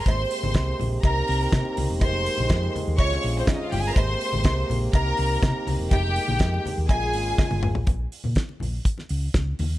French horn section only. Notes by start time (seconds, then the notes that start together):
0.05 C3 G#3 A#3 G4
1.03 D#3 A#3 C4
2.02 G#3
2.98 C3 C#3 F4
3.96 C3 G#3 A#3 G4
4.93 D#3 C4
5.92 G#3
6.90 C#3 G#3 F4